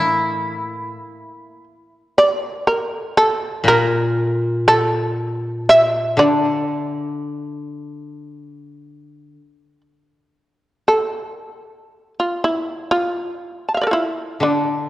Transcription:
Already playing: koto A2 E3 A3 A#3 E4, shamisen A4
2.18 shamisen D5
2.49 shamisen A#4
2.67 shamisen A#4
2.94 shamisen A4
3.17 shamisen A4
3.64 koto A#2
3.68 shamisen A#4
4.24 shamisen A4
4.68 shamisen A4
5.69 shamisen E5
6.17 koto D3, shamisen D5
10.88 shamisen A4
12.20 shamisen F4
12.44 shamisen E4
12.91 shamisen F4
13.69 shamisen A5
13.75 shamisen E5 F5
13.82 shamisen A#4 D5
13.87 shamisen A4
13.91 shamisen E4 F4
14.40 koto D3, shamisen D4

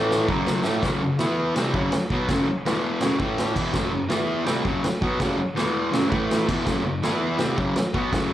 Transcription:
Already playing: distorted electric guitar A2 E3 A3
0.11 snare
0.27 distorted electric guitar F#2 C#3 F#3, kick
0.47 snare
0.63 distorted electric guitar A2 E3 A3, snare
0.82 distorted electric guitar F#2 C#3 F#3, kick, snare, crash
1.02 distorted electric guitar F#2 C#3
1.19 distorted electric guitar E3 B3 E4, snare, crash
1.56 distorted electric guitar C3 G3 C4, snare, crash
1.74 distorted electric guitar F#2 C#3 F#3, kick
1.92 muted distorted electric guitar stroke, snare, crash
2.10 distorted electric guitar B2 F#3 B3, kick
2.29 distorted electric guitar F#2 C#3 F#3, kick, snare, crash
2.47 muted distorted electric guitar stroke
2.65 distorted electric guitar E2 B2 E3, snare, crash
3.01 distorted electric guitar F#2 C#3 F#3, snare, crash
3.19 distorted electric guitar A2 E3 A3, kick
3.38 snare, crash
3.55 distorted electric guitar E2 B2 E3, kick, crash
3.73 distorted electric guitar F#2 C#3 F#3, kick, snare, crash
3.91 distorted electric guitar F#2 C#3
4.09 distorted electric guitar E3 B3 E4, snare, crash
4.45 distorted electric guitar C3 G3 C4, snare, crash
4.64 distorted electric guitar F#2 C#3 F#3, kick
4.84 muted distorted electric guitar stroke, snare, crash
5.01 distorted electric guitar B2 F#3 B3, kick
5.19 distorted electric guitar F#2 C#3 F#3, kick, snare, crash
5.38 muted distorted electric guitar stroke
5.55 distorted electric guitar E2 B2 E3, snare, crash
5.92 distorted electric guitar F#2 C#3 F#3, snare, crash
6.09 distorted electric guitar A2 E3 A3, kick
6.31 snare, crash
6.48 distorted electric guitar E2 B2 E3, kick, crash
6.66 distorted electric guitar F#2 C#3 F#3, kick, snare, crash
6.84 distorted electric guitar F#2 C#3
7.03 distorted electric guitar E3 B3 E4, snare, crash
7.39 distorted electric guitar C3 G3 C4, snare, crash
7.57 distorted electric guitar F#2 C#3 F#3, kick
7.76 muted distorted electric guitar stroke, snare, crash
7.93 distorted electric guitar B2 F#3 B3, kick
8.11 distorted electric guitar F#2 C#3 F#3, kick, snare, crash
8.30 muted distorted electric guitar stroke

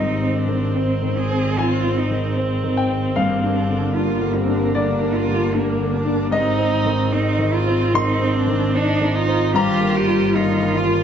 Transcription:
Already playing: double bass G#1, grand piano G#2 D#5, ambient pad D#3 G#4 C5, viola C4, cello D#4
0.22 grand piano C4
0.36 cello D4
0.47 grand piano D#3
0.75 grand piano C4, cello C4
1.02 grand piano D#3
1.17 cello G#4
1.30 grand piano C4
1.57 grand piano D#3 G#5, cello F4
1.84 grand piano C4
1.97 cello D#4
2.10 grand piano D#3
2.38 cello C4, grand piano C4
2.63 grand piano D#3
2.77 grand piano G5
2.90 grand piano C4
3.16 double bass G1, grand piano G2 F5, cello A#3, ambient pad D4 G4 A#4
3.43 grand piano D4
3.56 cello D4
3.69 grand piano D3
3.95 viola A#3, grand piano D4, cello F4
4.21 grand piano D3
4.35 cello C4
4.47 grand piano D4
4.73 grand piano D3 D5, cello D4
4.99 grand piano D4
5.15 cello F4
5.27 grand piano D3
5.54 cello A#3, grand piano D4
5.79 grand piano D3
5.94 cello D4
6.05 grand piano D4
6.31 double bass G#1, grand piano G#2 D#5, ambient pad D#3 G#4 C5, cello C4, viola D#4
6.58 grand piano C4
6.85 grand piano D#3
7.12 grand piano C4, viola C4, cello D#4
7.38 grand piano D#3
7.53 viola C4, cello F4
7.67 grand piano C4
7.94 grand piano D#3 C6, cello D#4
8.22 grand piano C4
8.35 cello D4
8.47 grand piano D#3
8.74 grand piano C4, viola D4, cello D#4
9.00 grand piano D#3
9.14 viola D#4, cello F4
9.28 grand piano C4
9.54 double bass G1, grand piano G2 A#5, viola F4, ambient pad F4 A#4, cello G4
9.80 grand piano A#3
9.95 cello F4, viola G4
10.08 grand piano G3
10.35 grand piano A#3, cello D#4, viola F4
10.63 grand piano G3
10.76 cello F4
10.88 grand piano A#3

